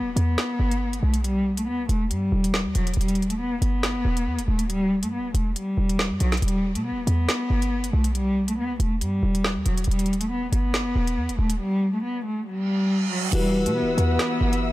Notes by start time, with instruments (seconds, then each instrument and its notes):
Already playing: cello B3
0.00 808-style bass E1
0.16 808-style bass E2, cello B3, closed hi-hat
0.38 snare, closed hi-hat
0.60 808-style bass G1
0.71 closed hi-hat
0.93 closed hi-hat
1.03 808-style bass B1, cello A3
1.14 closed hi-hat
1.24 cello G3, closed hi-hat
1.57 cello A3, closed hi-hat
1.67 808-style bass E2, cello B3
1.79 808-style bass B1
1.89 808-style bass E1, cello A3, closed hi-hat
2.11 808-style bass G2, cello G3, closed hi-hat
2.32 808-style bass E1
2.44 closed hi-hat
2.54 snare
2.65 808-style bass E2
2.75 808-style bass E1, cello F#3, closed hi-hat
2.87 closed hi-hat
2.94 808-style bass E1, cello G3, closed hi-hat
3.01 closed hi-hat
3.08 closed hi-hat
3.15 closed hi-hat
3.22 closed hi-hat
3.30 cello A3, closed hi-hat
3.40 cello B3
3.62 808-style bass G1, cello B3, closed hi-hat
3.83 snare, closed hi-hat
3.95 808-style bass F#1
4.05 808-style bass E1
4.17 closed hi-hat
4.27 808-style bass E2
4.38 808-style bass E1, closed hi-hat
4.48 808-style bass D#1, cello A3
4.59 closed hi-hat
4.69 cello G3, closed hi-hat
5.03 808-style bass G2, cello A3, closed hi-hat
5.13 cello B3
5.19 808-style bass D#1
5.34 808-style bass E1, cello A3, closed hi-hat
5.56 cello G3, closed hi-hat
5.78 808-style bass E1
5.89 closed hi-hat
5.99 snare
6.11 808-style bass G2
6.20 808-style bass B1, cello F#3, closed hi-hat
6.32 snare, closed hi-hat
6.37 closed hi-hat
6.42 808-style bass E1, cello G3, closed hi-hat
6.48 closed hi-hat
6.75 808-style bass B2, cello A3, closed hi-hat
6.86 cello B3
6.91 808-style bass E1
7.07 808-style bass E2, cello B3, closed hi-hat
7.29 snare, closed hi-hat
7.50 808-style bass G1
7.62 closed hi-hat
7.84 closed hi-hat
7.93 808-style bass B1, cello A3
8.04 closed hi-hat
8.15 cello G3, closed hi-hat
8.48 cello A3, closed hi-hat
8.58 808-style bass E2, cello B3
8.70 808-style bass B1
8.80 808-style bass E1, cello A3, closed hi-hat
9.01 808-style bass G2, cello G3, closed hi-hat
9.23 808-style bass E1
9.35 closed hi-hat
9.44 snare
9.56 808-style bass E2
9.66 808-style bass E1, cello F#3, closed hi-hat
9.77 closed hi-hat
9.84 808-style bass E1, cello G3, closed hi-hat
9.91 closed hi-hat
9.99 closed hi-hat
10.06 closed hi-hat
10.13 closed hi-hat
10.20 cello A3, closed hi-hat
10.31 cello B3
10.52 808-style bass G1, cello B3, closed hi-hat
10.74 snare, closed hi-hat
10.85 808-style bass F#1
10.96 808-style bass E1
11.07 closed hi-hat
11.17 808-style bass E2
11.29 808-style bass E1, closed hi-hat
11.39 808-style bass D#1, cello A3
11.50 closed hi-hat
11.60 cello G3
11.93 cello A3
12.03 cello B3
12.25 cello A3
12.47 cello G3, reverse cymbal
13.11 cello F#3
13.31 808-style bass E1, tine electric piano E3 E4 F#4 G4, cello G3, soft synth lead B4, string section B4 E5 F#5 E6, closed hi-hat, crash
13.66 808-style bass B2, cello A3, closed hi-hat
13.76 cello B3
13.82 808-style bass E1
13.98 808-style bass E2, cello B3, closed hi-hat
14.19 snare, closed hi-hat
14.41 808-style bass G1
14.53 closed hi-hat
14.62 soft synth lead E5